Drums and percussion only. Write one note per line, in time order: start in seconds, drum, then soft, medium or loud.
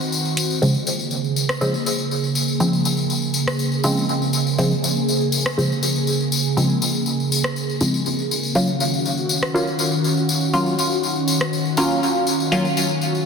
0.01 tambourine soft
0.12 tambourine medium
0.25 tambourine soft
0.37 closed hi-hat medium
0.37 tambourine medium
0.50 tambourine soft
0.62 tambourine soft
0.74 tambourine soft
0.87 tambourine medium
0.99 tambourine soft
1.11 tambourine soft
1.24 tambourine soft
1.36 tambourine medium
1.49 cross-stick medium
1.49 tambourine soft
1.61 tambourine soft
1.74 tambourine soft
1.86 tambourine medium
1.98 tambourine soft
2.11 tambourine soft
2.24 tambourine soft
2.35 tambourine medium
2.48 tambourine soft
2.60 tambourine soft
2.73 tambourine soft
2.85 tambourine medium
2.97 tambourine soft
3.10 tambourine soft
3.22 tambourine soft
3.34 tambourine medium
3.48 cross-stick medium
3.48 tambourine soft
3.59 tambourine soft
3.72 tambourine soft
3.84 tambourine medium
3.97 tambourine soft
4.09 tambourine soft
4.22 tambourine soft
4.33 tambourine medium
4.47 tambourine soft
4.58 tambourine soft
4.71 tambourine soft
4.84 tambourine medium
4.97 tambourine soft
5.09 tambourine medium
5.21 tambourine soft
5.32 tambourine medium
5.46 cross-stick medium
5.59 tambourine soft
5.72 tambourine soft
5.83 tambourine medium
5.96 tambourine soft
6.07 tambourine medium
6.20 tambourine soft
6.32 tambourine medium
6.45 tambourine soft
6.57 tambourine soft
6.70 tambourine soft
6.82 tambourine medium
6.95 tambourine soft
7.06 tambourine soft
7.20 tambourine soft
7.32 tambourine medium
7.44 cross-stick medium
7.56 tambourine soft
7.69 tambourine soft
7.81 tambourine medium
7.94 tambourine soft
8.06 tambourine medium
8.19 tambourine soft
8.31 tambourine medium
8.43 tambourine soft
8.55 tambourine soft
8.67 tambourine soft
8.80 tambourine medium
8.94 tambourine soft
9.05 tambourine soft
9.17 tambourine soft
9.29 tambourine medium
9.43 cross-stick medium
9.55 tambourine soft
9.67 tambourine soft
9.79 tambourine medium
9.92 tambourine soft
10.04 tambourine soft
10.17 tambourine soft
10.29 tambourine medium
10.41 tambourine soft
10.53 tambourine soft
10.66 tambourine soft
10.79 tambourine medium
10.91 tambourine soft
11.03 tambourine soft
11.16 tambourine soft
11.28 tambourine medium
11.41 cross-stick medium
11.53 tambourine soft
11.65 tambourine soft
11.77 tambourine medium
11.91 tambourine soft
12.03 tambourine soft
12.15 tambourine soft
12.27 tambourine medium
12.40 tambourine soft
12.52 tambourine soft
12.65 tambourine soft
12.77 tambourine medium
12.89 tambourine soft
13.01 tambourine soft
13.15 tambourine soft